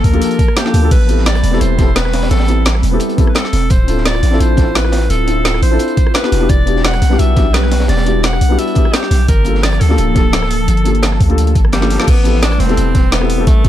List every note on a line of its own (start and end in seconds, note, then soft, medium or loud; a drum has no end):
0.00 0.89 F3 medium
0.00 0.89 A#3 medium
0.00 0.89 A5 medium
0.04 0.20 D2 medium
0.04 0.58 A#4 loud
0.04 kick medium
0.04 closed hi-hat medium
0.04 open hi-hat medium
0.12 0.36 A#3 loud
0.12 0.37 D4 medium
0.12 0.37 F4 medium
0.12 0.37 G4 medium
0.12 0.38 A4 loud
0.12 closed hi-hat soft
0.22 closed hi-hat loud
0.31 closed hi-hat soft
0.39 kick loud
0.39 closed hi-hat medium
0.48 cross-stick medium
0.57 0.91 G4 medium
0.57 snare loud
0.57 closed hi-hat medium
0.57 closed hi-hat loud
0.64 0.80 A#3 medium
0.64 0.81 D4 medium
0.64 0.81 F4 medium
0.64 0.81 G4 medium
0.64 0.82 A4 medium
0.64 snare soft
0.74 0.90 D2 medium
0.74 closed hi-hat medium
0.74 open hi-hat medium
0.82 0.89 A#3 medium
0.82 0.90 D4 medium
0.82 0.90 F4 medium
0.82 0.91 G4 medium
0.82 0.91 A4 loud
0.91 1.42 A1 loud
0.91 3.68 G3 medium
0.91 6.28 C4 medium
0.91 1.28 B4 loud
0.91 3.68 B5 medium
0.91 kick loud
0.91 closed hi-hat medium
0.91 closed hi-hat loud
0.91 crash medium
1.07 1.20 B3 medium
1.07 1.21 C4 medium
1.07 1.21 E4 medium
1.07 1.21 G4 medium
1.07 1.22 A4 medium
1.07 closed hi-hat medium
1.18 snare soft
1.26 1.62 D5 loud
1.26 snare loud
1.26 closed hi-hat loud
1.26 open hi-hat medium
1.35 cross-stick medium
1.35 closed hi-hat soft
1.44 1.59 E1 medium
1.44 snare soft
1.44 closed hi-hat medium
1.44 open hi-hat medium
1.51 1.76 B3 loud
1.51 1.76 C4 medium
1.51 1.77 E4 medium
1.51 1.77 G4 medium
1.51 1.77 A4 loud
1.51 snare soft
1.61 2.30 E1 medium
1.61 1.97 C5 loud
1.61 closed hi-hat loud
1.61 closed hi-hat medium
1.77 1.86 B3 loud
1.77 1.86 C4 medium
1.77 1.86 E4 medium
1.77 1.87 G4 medium
1.77 1.87 A4 loud
1.77 kick loud
1.77 snare medium
1.77 closed hi-hat medium
1.96 2.30 B4 loud
1.96 snare loud
1.96 closed hi-hat medium
1.96 closed hi-hat loud
2.05 cross-stick soft
2.05 snare soft
2.13 snare loud
2.13 open hi-hat medium
2.23 snare loud
2.23 open hi-hat medium
2.31 2.82 A1 loud
2.31 2.80 A4 medium
2.31 snare loud
2.31 closed hi-hat loud
2.31 open hi-hat medium
2.40 snare medium
2.40 open hi-hat medium
2.47 2.60 B3 medium
2.47 2.60 C4 medium
2.47 2.61 E4 medium
2.47 2.61 G4 medium
2.47 2.61 A4 medium
2.47 closed hi-hat medium
2.65 snare loud
2.65 closed hi-hat medium
2.75 cross-stick soft
2.83 2.99 E1 medium
2.83 closed hi-hat medium
2.83 open hi-hat medium
2.91 3.15 B3 loud
2.91 3.16 C4 medium
2.91 3.16 E4 medium
2.91 3.17 G4 medium
2.91 3.17 A4 loud
3.00 closed hi-hat medium
3.09 closed hi-hat soft
3.17 3.25 B3 loud
3.17 3.26 C4 medium
3.17 3.26 E4 medium
3.17 3.26 G4 medium
3.17 3.27 A4 loud
3.17 kick loud
3.17 closed hi-hat medium
3.27 3.37 B4 medium
3.27 cross-stick medium
3.35 3.72 A4 loud
3.35 snare loud
3.35 closed hi-hat medium
3.35 closed hi-hat loud
3.45 snare soft
3.53 3.69 E1 medium
3.53 snare soft
3.53 closed hi-hat medium
3.53 open hi-hat medium
3.70 4.22 D1 loud
3.70 6.29 E4 medium
3.70 6.30 F4 medium
3.70 4.05 C5 loud
3.70 kick loud
3.70 closed hi-hat medium
3.87 3.99 C4 medium
3.87 4.00 D4 medium
3.87 4.00 E4 medium
3.87 4.01 F4 medium
3.87 4.01 A4 medium
3.87 closed hi-hat medium
3.97 snare soft
4.06 4.42 D5 loud
4.06 snare loud
4.06 closed hi-hat medium
4.06 open hi-hat medium
4.14 cross-stick soft
4.14 closed hi-hat soft
4.23 4.39 A1 medium
4.23 snare soft
4.23 closed hi-hat medium
4.23 open hi-hat medium
4.31 4.55 C4 loud
4.31 4.55 D4 medium
4.31 4.56 E4 medium
4.31 4.56 F4 medium
4.31 4.57 A4 loud
4.31 snare soft
4.40 5.09 A1 medium
4.40 4.77 C5 loud
4.40 closed hi-hat medium
4.56 4.65 C4 loud
4.56 4.65 D4 medium
4.56 4.66 E4 medium
4.56 4.66 F4 medium
4.56 4.66 A4 loud
4.56 kick loud
4.56 snare medium
4.56 closed hi-hat medium
4.75 5.12 B4 loud
4.75 snare loud
4.75 closed hi-hat medium
4.84 cross-stick medium
4.84 snare soft
4.92 snare loud
4.92 open hi-hat medium
5.02 closed hi-hat soft
5.10 5.61 D1 loud
5.10 5.62 A4 loud
5.10 closed hi-hat medium
5.10 closed hi-hat loud
5.26 5.39 C4 medium
5.26 5.39 D4 medium
5.26 5.40 E4 medium
5.26 5.40 F4 medium
5.26 5.41 A4 medium
5.26 closed hi-hat medium
5.45 snare loud
5.45 closed hi-hat medium
5.54 cross-stick soft
5.62 5.78 A1 medium
5.62 6.11 C5 loud
5.62 closed hi-hat medium
5.62 open hi-hat medium
5.70 5.95 C4 loud
5.70 5.95 D4 medium
5.70 5.95 E4 medium
5.70 5.96 F4 medium
5.70 5.96 A4 loud
5.79 closed hi-hat medium
5.88 closed hi-hat soft
5.97 kick loud
5.97 closed hi-hat medium
6.07 cross-stick medium
6.14 6.51 B4 loud
6.14 snare loud
6.14 closed hi-hat medium
6.22 6.38 B3 medium
6.22 6.39 D4 medium
6.22 6.39 E4 medium
6.22 6.40 F#4 medium
6.22 6.40 G4 medium
6.22 snare soft
6.32 6.48 E1 medium
6.32 9.26 G3 medium
6.32 9.26 D4 medium
6.32 9.26 G4 medium
6.32 snare medium
6.32 closed hi-hat medium
6.32 open hi-hat medium
6.40 6.48 B3 loud
6.40 6.48 D4 medium
6.40 6.48 E4 medium
6.40 6.49 F#4 medium
6.40 6.49 G4 loud
6.49 7.01 E1 loud
6.49 6.86 D5 loud
6.49 kick loud
6.49 closed hi-hat medium
6.66 6.79 B3 medium
6.66 6.79 D4 medium
6.66 6.79 E4 medium
6.66 6.80 F#4 medium
6.66 6.80 G4 medium
6.66 closed hi-hat medium
6.76 snare soft
6.84 7.21 F#5 loud
6.84 snare loud
6.84 closed hi-hat medium
6.84 open hi-hat medium
6.93 cross-stick soft
6.93 closed hi-hat medium
7.02 7.18 B1 medium
7.02 snare soft
7.02 closed hi-hat medium
7.02 open hi-hat medium
7.09 7.34 B3 loud
7.09 7.34 D4 medium
7.09 7.35 E4 medium
7.09 7.35 F#4 medium
7.09 7.36 G4 loud
7.09 snare soft
7.19 7.88 B1 medium
7.19 7.56 E5 loud
7.19 closed hi-hat medium
7.19 closed hi-hat loud
7.35 7.44 B3 loud
7.35 7.44 D4 medium
7.35 7.45 E4 medium
7.35 7.45 F#4 medium
7.35 7.45 G4 loud
7.35 kick loud
7.35 snare soft
7.35 closed hi-hat medium
7.54 7.89 B4 loud
7.54 snare loud
7.54 closed hi-hat loud
7.54 closed hi-hat medium
7.63 cross-stick soft
7.63 snare soft
7.71 snare loud
7.71 open hi-hat medium
7.80 snare loud
7.80 open hi-hat medium
7.88 8.40 E1 loud
7.88 8.25 D5 loud
7.88 snare loud
7.88 closed hi-hat medium
7.88 open hi-hat medium
7.97 snare loud
7.97 open hi-hat medium
8.05 8.18 B3 medium
8.05 8.18 D4 medium
8.05 8.19 E4 medium
8.05 8.19 F#4 medium
8.05 8.19 G4 medium
8.05 closed hi-hat medium
8.23 8.60 F#5 loud
8.23 snare loud
8.23 closed hi-hat medium
8.33 cross-stick soft
8.41 8.57 B1 medium
8.41 closed hi-hat medium
8.41 open hi-hat medium
8.49 8.73 B3 loud
8.49 8.74 D4 medium
8.49 8.74 E4 medium
8.49 8.75 F#4 medium
8.49 8.75 G4 loud
8.59 8.95 E5 loud
8.59 closed hi-hat medium
8.67 closed hi-hat soft
8.75 8.83 B3 loud
8.75 8.84 D4 medium
8.75 8.84 E4 medium
8.75 8.84 F#4 medium
8.75 8.85 G4 loud
8.75 kick loud
8.75 closed hi-hat medium
8.85 cross-stick medium
8.93 9.28 G4 loud
8.93 snare loud
8.93 closed hi-hat medium
9.03 snare soft
9.11 9.27 B1 medium
9.11 snare medium
9.11 closed hi-hat medium
9.11 open hi-hat medium
9.28 9.80 G1 loud
9.28 12.05 F3 medium
9.28 12.05 A#3 medium
9.28 9.65 A#4 loud
9.28 12.05 A5 medium
9.28 kick loud
9.28 closed hi-hat loud
9.28 closed hi-hat medium
9.44 9.57 A#3 medium
9.44 9.58 D4 medium
9.44 9.58 F4 medium
9.44 9.59 G4 medium
9.44 9.59 A4 medium
9.44 closed hi-hat medium
9.55 snare soft
9.63 9.83 D5 loud
9.63 snare loud
9.63 closed hi-hat loud
9.63 open hi-hat medium
9.73 cross-stick soft
9.73 closed hi-hat soft
9.80 9.97 D2 medium
9.80 11.56 A4 loud
9.80 snare soft
9.80 closed hi-hat medium
9.80 open hi-hat medium
9.88 10.13 A#3 loud
9.88 10.13 D4 medium
9.88 10.14 F4 medium
9.88 10.14 G4 medium
9.88 10.14 A4 loud
9.88 snare soft
9.98 10.67 D1 medium
9.98 closed hi-hat medium
9.98 closed hi-hat loud
10.14 10.23 A#3 loud
10.14 10.23 D4 medium
10.14 10.24 F4 medium
10.14 10.24 G4 medium
10.14 10.24 A4 loud
10.14 kick loud
10.14 snare soft
10.14 closed hi-hat medium
10.33 snare loud
10.33 closed hi-hat medium
10.33 closed hi-hat loud
10.42 cross-stick soft
10.42 snare soft
10.51 closed hi-hat medium
10.51 open hi-hat medium
10.68 11.19 G1 loud
10.68 closed hi-hat loud
10.68 closed hi-hat medium
10.77 closed hi-hat soft
10.84 10.97 A#3 medium
10.84 10.97 D4 medium
10.84 10.98 F4 medium
10.84 10.98 G4 medium
10.84 10.98 A4 medium
10.84 closed hi-hat medium
10.95 closed hi-hat soft
11.03 snare loud
11.03 closed hi-hat loud
11.03 closed hi-hat medium
11.12 cross-stick soft
11.20 11.57 D2 medium
11.20 kick medium
11.20 closed hi-hat medium
11.20 open hi-hat medium
11.28 11.53 A#3 loud
11.28 11.53 D4 medium
11.28 11.53 F4 medium
11.28 11.54 G4 medium
11.28 11.54 A4 loud
11.28 closed hi-hat soft
11.38 closed hi-hat loud
11.38 closed hi-hat medium
11.47 closed hi-hat soft
11.55 11.98 G1 medium
11.55 kick loud
11.55 closed hi-hat medium
11.65 cross-stick medium
11.73 12.09 G3 loud
11.73 snare medium
11.73 snare loud
11.73 closed hi-hat medium
11.73 closed hi-hat loud
11.80 11.96 A#3 medium
11.80 11.97 D4 medium
11.80 11.97 F4 medium
11.80 11.97 G4 medium
11.80 11.98 A4 medium
11.80 snare medium
11.90 snare medium
11.90 closed hi-hat medium
11.90 open hi-hat medium
11.98 12.06 A#3 loud
11.98 12.06 D4 medium
11.98 12.06 F4 medium
11.98 12.07 G4 medium
11.98 12.07 A4 loud
11.98 snare medium
12.07 12.59 A1 loud
12.07 13.69 G3 medium
12.07 13.69 A3 medium
12.07 12.44 B3 loud
12.07 13.69 B4 medium
12.07 kick loud
12.07 closed hi-hat medium
12.07 closed hi-hat loud
12.07 crash loud
12.23 12.37 B3 medium
12.23 12.37 C4 medium
12.23 12.37 E4 medium
12.23 12.38 G4 medium
12.23 12.38 A4 medium
12.23 closed hi-hat medium
12.34 snare soft
12.43 12.62 D4 loud
12.43 snare loud
12.43 closed hi-hat loud
12.43 open hi-hat medium
12.51 cross-stick soft
12.51 closed hi-hat soft
12.60 12.76 E1 medium
12.60 13.13 C4 loud
12.60 snare soft
12.60 closed hi-hat medium
12.60 open hi-hat medium
12.68 12.92 B3 loud
12.68 12.93 C4 medium
12.68 12.93 E4 medium
12.68 12.93 G4 medium
12.68 12.94 A4 loud
12.68 snare soft
12.68 closed hi-hat soft
12.77 13.46 E1 medium
12.77 closed hi-hat medium
12.77 closed hi-hat loud
12.95 kick loud
12.95 snare medium
12.95 closed hi-hat medium
13.12 13.46 B3 loud
13.12 snare loud
13.12 closed hi-hat medium
13.12 closed hi-hat loud
13.20 13.36 B3 medium
13.20 13.36 C4 medium
13.20 13.37 E4 medium
13.20 13.37 G4 medium
13.20 13.38 A4 loud
13.20 cross-stick medium
13.20 snare soft
13.29 closed hi-hat medium
13.29 open hi-hat medium
13.37 13.45 B3 loud
13.37 13.46 C4 medium
13.37 13.46 E4 medium
13.37 13.46 G4 medium
13.37 13.47 A4 loud
13.47 13.69 A1 loud
13.47 13.69 A3 loud
13.47 kick loud
13.47 closed hi-hat medium
13.63 13.69 B3 medium
13.63 13.69 C4 medium
13.63 13.69 E4 medium
13.63 13.69 G4 medium
13.63 kick loud
13.63 closed hi-hat medium